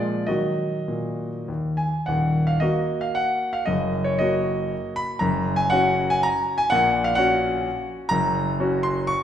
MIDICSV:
0, 0, Header, 1, 2, 480
1, 0, Start_track
1, 0, Key_signature, -6, "minor"
1, 0, Tempo, 591716
1, 225, Time_signature, 3, 2, 24, 8
1, 1682, Tempo, 530035
1, 4082, Tempo, 491400
1, 5042, Tempo, 532860
1, 5522, Tempo, 468384
1, 7442, Tempo, 490196
1, 8536, End_track
2, 0, Start_track
2, 0, Title_t, "Grand piano"
2, 0, Program_c, 0, 0
2, 0, Control_c, 0, 64, 127
2, 0, Note_on_c, 0, 46, 53
2, 0, Note_on_c, 0, 53, 38
2, 0, Note_on_c, 0, 56, 37
2, 0, Note_on_c, 0, 65, 37
2, 0, Note_on_c, 0, 74, 76
2, 194, Note_off_c, 0, 53, 0
2, 197, Note_off_c, 0, 56, 0
2, 200, Note_off_c, 0, 65, 0
2, 213, Note_off_c, 0, 46, 0
2, 215, Note_on_c, 0, 75, 65
2, 219, Note_off_c, 0, 74, 0
2, 229, Note_on_c, 0, 66, 34
2, 230, Note_on_c, 0, 51, 40
2, 230, Note_on_c, 0, 54, 31
2, 238, Control_c, 0, 64, 0
2, 402, Control_c, 0, 64, 127
2, 569, Note_off_c, 0, 51, 0
2, 617, Note_off_c, 0, 66, 0
2, 618, Note_off_c, 0, 54, 0
2, 714, Note_on_c, 0, 46, 38
2, 1060, Note_off_c, 0, 46, 0
2, 1202, Note_off_c, 0, 75, 0
2, 1203, Note_on_c, 0, 39, 37
2, 1213, Control_c, 0, 64, 0
2, 1436, Note_on_c, 0, 80, 55
2, 1537, Note_off_c, 0, 39, 0
2, 1671, Note_on_c, 0, 78, 65
2, 1676, Note_off_c, 0, 80, 0
2, 1685, Note_on_c, 0, 27, 42
2, 1689, Note_on_c, 0, 39, 48
2, 1867, Control_c, 0, 64, 127
2, 2039, Note_on_c, 0, 77, 69
2, 2043, Note_off_c, 0, 78, 0
2, 2159, Note_on_c, 0, 75, 72
2, 2162, Note_off_c, 0, 27, 0
2, 2164, Note_off_c, 0, 39, 0
2, 2171, Note_off_c, 0, 77, 0
2, 2172, Note_on_c, 0, 58, 39
2, 2181, Note_on_c, 0, 66, 42
2, 2183, Control_c, 0, 64, 0
2, 2529, Note_on_c, 0, 77, 70
2, 2535, Note_off_c, 0, 75, 0
2, 2653, Note_off_c, 0, 77, 0
2, 2655, Note_on_c, 0, 78, 79
2, 2999, Note_on_c, 0, 77, 73
2, 3009, Note_off_c, 0, 78, 0
2, 3089, Note_off_c, 0, 58, 0
2, 3093, Note_off_c, 0, 66, 0
2, 3115, Note_on_c, 0, 75, 74
2, 3121, Note_off_c, 0, 77, 0
2, 3130, Note_on_c, 0, 42, 52
2, 3134, Note_on_c, 0, 30, 48
2, 3335, Control_c, 0, 64, 127
2, 3467, Note_on_c, 0, 73, 71
2, 3474, Note_off_c, 0, 75, 0
2, 3590, Note_off_c, 0, 42, 0
2, 3592, Note_off_c, 0, 30, 0
2, 3595, Note_on_c, 0, 75, 81
2, 3596, Note_off_c, 0, 73, 0
2, 3612, Note_on_c, 0, 66, 45
2, 3613, Note_on_c, 0, 58, 42
2, 4089, Control_c, 0, 64, 0
2, 4313, Note_on_c, 0, 83, 89
2, 4320, Note_off_c, 0, 75, 0
2, 4521, Note_off_c, 0, 66, 0
2, 4522, Note_off_c, 0, 58, 0
2, 4540, Note_on_c, 0, 82, 79
2, 4550, Note_off_c, 0, 83, 0
2, 4556, Note_on_c, 0, 42, 59
2, 4562, Note_on_c, 0, 30, 55
2, 4739, Control_c, 0, 64, 127
2, 4901, Note_on_c, 0, 80, 90
2, 4903, Note_off_c, 0, 82, 0
2, 5028, Note_off_c, 0, 42, 0
2, 5031, Note_off_c, 0, 30, 0
2, 5033, Note_on_c, 0, 78, 91
2, 5037, Note_off_c, 0, 80, 0
2, 5052, Note_on_c, 0, 61, 48
2, 5055, Note_on_c, 0, 66, 49
2, 5398, Note_on_c, 0, 80, 91
2, 5405, Note_off_c, 0, 78, 0
2, 5514, Note_on_c, 0, 82, 95
2, 5518, Note_off_c, 0, 80, 0
2, 5533, Control_c, 0, 64, 0
2, 5868, Note_on_c, 0, 80, 96
2, 5882, Note_off_c, 0, 82, 0
2, 5968, Note_off_c, 0, 61, 0
2, 5969, Note_off_c, 0, 66, 0
2, 5993, Note_off_c, 0, 80, 0
2, 5993, Note_on_c, 0, 78, 98
2, 6011, Note_on_c, 0, 34, 58
2, 6014, Note_on_c, 0, 46, 66
2, 6168, Control_c, 0, 64, 127
2, 6346, Note_on_c, 0, 77, 90
2, 6357, Note_off_c, 0, 78, 0
2, 6458, Note_on_c, 0, 78, 93
2, 6478, Note_off_c, 0, 34, 0
2, 6480, Note_off_c, 0, 46, 0
2, 6481, Note_off_c, 0, 77, 0
2, 6485, Note_on_c, 0, 61, 50
2, 6486, Note_on_c, 0, 66, 54
2, 6987, Control_c, 0, 64, 0
2, 7194, Note_off_c, 0, 78, 0
2, 7399, Note_off_c, 0, 61, 0
2, 7400, Note_off_c, 0, 66, 0
2, 7417, Note_on_c, 0, 82, 105
2, 7440, Note_on_c, 0, 42, 62
2, 7442, Note_on_c, 0, 30, 60
2, 7627, Control_c, 0, 64, 127
2, 7901, Note_off_c, 0, 42, 0
2, 7902, Note_off_c, 0, 30, 0
2, 7918, Note_on_c, 0, 61, 49
2, 7922, Note_on_c, 0, 66, 57
2, 8146, Note_on_c, 0, 84, 93
2, 8152, Note_off_c, 0, 82, 0
2, 8383, Note_on_c, 0, 85, 100
2, 8395, Note_off_c, 0, 84, 0
2, 8418, Control_c, 0, 64, 0
2, 8536, Note_off_c, 0, 61, 0
2, 8536, Note_off_c, 0, 66, 0
2, 8536, Note_off_c, 0, 85, 0
2, 8536, End_track
0, 0, End_of_file